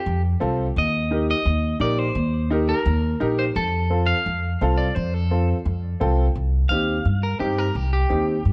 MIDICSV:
0, 0, Header, 1, 4, 480
1, 0, Start_track
1, 0, Tempo, 349854
1, 1041, Time_signature, 4, 2, 24, 8
1, 11699, End_track
2, 0, Start_track
2, 0, Title_t, "Clean electric guitar"
2, 0, Program_c, 0, 27
2, 0, Note_on_c, 0, 67, 74
2, 294, Note_off_c, 0, 67, 0
2, 1075, Note_on_c, 0, 75, 92
2, 1728, Note_off_c, 0, 75, 0
2, 1792, Note_on_c, 0, 75, 98
2, 2447, Note_off_c, 0, 75, 0
2, 2486, Note_on_c, 0, 74, 97
2, 2727, Note_off_c, 0, 74, 0
2, 2727, Note_on_c, 0, 72, 93
2, 3443, Note_off_c, 0, 72, 0
2, 3688, Note_on_c, 0, 70, 94
2, 4589, Note_off_c, 0, 70, 0
2, 4648, Note_on_c, 0, 72, 89
2, 4716, Note_off_c, 0, 72, 0
2, 4887, Note_on_c, 0, 69, 95
2, 5577, Note_on_c, 0, 77, 112
2, 5603, Note_off_c, 0, 69, 0
2, 6552, Note_on_c, 0, 74, 89
2, 6577, Note_off_c, 0, 77, 0
2, 6790, Note_off_c, 0, 74, 0
2, 6790, Note_on_c, 0, 72, 102
2, 7052, Note_off_c, 0, 72, 0
2, 7052, Note_on_c, 0, 69, 82
2, 7525, Note_off_c, 0, 69, 0
2, 9181, Note_on_c, 0, 77, 97
2, 9889, Note_off_c, 0, 77, 0
2, 9923, Note_on_c, 0, 70, 77
2, 10150, Note_off_c, 0, 70, 0
2, 10155, Note_on_c, 0, 67, 78
2, 10405, Note_off_c, 0, 67, 0
2, 10405, Note_on_c, 0, 70, 69
2, 10647, Note_off_c, 0, 70, 0
2, 10647, Note_on_c, 0, 67, 83
2, 10863, Note_off_c, 0, 67, 0
2, 10880, Note_on_c, 0, 67, 90
2, 11699, Note_off_c, 0, 67, 0
2, 11699, End_track
3, 0, Start_track
3, 0, Title_t, "Upright piano"
3, 0, Program_c, 1, 0
3, 552, Note_on_c, 1, 60, 89
3, 558, Note_on_c, 1, 65, 82
3, 560, Note_on_c, 1, 69, 94
3, 893, Note_off_c, 1, 60, 0
3, 896, Note_off_c, 1, 65, 0
3, 897, Note_off_c, 1, 69, 0
3, 1519, Note_on_c, 1, 63, 76
3, 1530, Note_on_c, 1, 67, 73
3, 1532, Note_on_c, 1, 70, 82
3, 1856, Note_off_c, 1, 63, 0
3, 1861, Note_off_c, 1, 67, 0
3, 1862, Note_off_c, 1, 70, 0
3, 2465, Note_on_c, 1, 63, 75
3, 2476, Note_on_c, 1, 67, 71
3, 2485, Note_on_c, 1, 70, 81
3, 2808, Note_off_c, 1, 63, 0
3, 2814, Note_off_c, 1, 67, 0
3, 2818, Note_off_c, 1, 70, 0
3, 3436, Note_on_c, 1, 63, 90
3, 3446, Note_on_c, 1, 67, 85
3, 3454, Note_on_c, 1, 70, 100
3, 3774, Note_off_c, 1, 63, 0
3, 3779, Note_off_c, 1, 67, 0
3, 3783, Note_off_c, 1, 70, 0
3, 4392, Note_on_c, 1, 63, 87
3, 4395, Note_on_c, 1, 67, 81
3, 4402, Note_on_c, 1, 70, 99
3, 4732, Note_off_c, 1, 63, 0
3, 4733, Note_off_c, 1, 67, 0
3, 4737, Note_off_c, 1, 70, 0
3, 5351, Note_on_c, 1, 60, 78
3, 5358, Note_on_c, 1, 65, 68
3, 5358, Note_on_c, 1, 69, 83
3, 5691, Note_off_c, 1, 60, 0
3, 5694, Note_off_c, 1, 69, 0
3, 5695, Note_off_c, 1, 65, 0
3, 6332, Note_on_c, 1, 60, 87
3, 6335, Note_on_c, 1, 65, 79
3, 6340, Note_on_c, 1, 69, 104
3, 6661, Note_off_c, 1, 60, 0
3, 6663, Note_off_c, 1, 65, 0
3, 6665, Note_off_c, 1, 69, 0
3, 7283, Note_on_c, 1, 65, 69
3, 7288, Note_on_c, 1, 60, 77
3, 7289, Note_on_c, 1, 69, 83
3, 7617, Note_off_c, 1, 65, 0
3, 7619, Note_off_c, 1, 60, 0
3, 7620, Note_off_c, 1, 69, 0
3, 8234, Note_on_c, 1, 60, 86
3, 8240, Note_on_c, 1, 79, 74
3, 8245, Note_on_c, 1, 65, 85
3, 8245, Note_on_c, 1, 69, 101
3, 8573, Note_off_c, 1, 60, 0
3, 8578, Note_off_c, 1, 65, 0
3, 8578, Note_off_c, 1, 69, 0
3, 8686, Note_off_c, 1, 79, 0
3, 9202, Note_on_c, 1, 60, 70
3, 9212, Note_on_c, 1, 63, 66
3, 9216, Note_on_c, 1, 67, 78
3, 9537, Note_off_c, 1, 60, 0
3, 9542, Note_off_c, 1, 63, 0
3, 9544, Note_off_c, 1, 67, 0
3, 10144, Note_on_c, 1, 60, 72
3, 10150, Note_on_c, 1, 63, 67
3, 10160, Note_on_c, 1, 67, 84
3, 10488, Note_off_c, 1, 60, 0
3, 10492, Note_off_c, 1, 63, 0
3, 10496, Note_off_c, 1, 67, 0
3, 11108, Note_on_c, 1, 60, 74
3, 11112, Note_on_c, 1, 67, 82
3, 11114, Note_on_c, 1, 63, 68
3, 11451, Note_off_c, 1, 60, 0
3, 11453, Note_off_c, 1, 67, 0
3, 11454, Note_off_c, 1, 63, 0
3, 11699, End_track
4, 0, Start_track
4, 0, Title_t, "Upright bass"
4, 0, Program_c, 2, 32
4, 84, Note_on_c, 2, 41, 96
4, 467, Note_off_c, 2, 41, 0
4, 566, Note_on_c, 2, 36, 85
4, 948, Note_off_c, 2, 36, 0
4, 1046, Note_on_c, 2, 39, 99
4, 1812, Note_off_c, 2, 39, 0
4, 1995, Note_on_c, 2, 39, 94
4, 2381, Note_off_c, 2, 39, 0
4, 2466, Note_on_c, 2, 34, 91
4, 2856, Note_off_c, 2, 34, 0
4, 2952, Note_on_c, 2, 39, 100
4, 3723, Note_off_c, 2, 39, 0
4, 3917, Note_on_c, 2, 39, 100
4, 4302, Note_off_c, 2, 39, 0
4, 4401, Note_on_c, 2, 34, 93
4, 4784, Note_off_c, 2, 34, 0
4, 4880, Note_on_c, 2, 41, 102
4, 5647, Note_off_c, 2, 41, 0
4, 5846, Note_on_c, 2, 41, 93
4, 6227, Note_off_c, 2, 41, 0
4, 6328, Note_on_c, 2, 36, 88
4, 6708, Note_off_c, 2, 36, 0
4, 6803, Note_on_c, 2, 41, 104
4, 7569, Note_off_c, 2, 41, 0
4, 7757, Note_on_c, 2, 41, 95
4, 8142, Note_off_c, 2, 41, 0
4, 8247, Note_on_c, 2, 36, 91
4, 8628, Note_off_c, 2, 36, 0
4, 8718, Note_on_c, 2, 36, 93
4, 9103, Note_off_c, 2, 36, 0
4, 9197, Note_on_c, 2, 39, 81
4, 9582, Note_off_c, 2, 39, 0
4, 9676, Note_on_c, 2, 43, 90
4, 10062, Note_off_c, 2, 43, 0
4, 10158, Note_on_c, 2, 43, 84
4, 10543, Note_off_c, 2, 43, 0
4, 10635, Note_on_c, 2, 36, 86
4, 11021, Note_off_c, 2, 36, 0
4, 11118, Note_on_c, 2, 39, 88
4, 11504, Note_off_c, 2, 39, 0
4, 11596, Note_on_c, 2, 43, 92
4, 11699, Note_off_c, 2, 43, 0
4, 11699, End_track
0, 0, End_of_file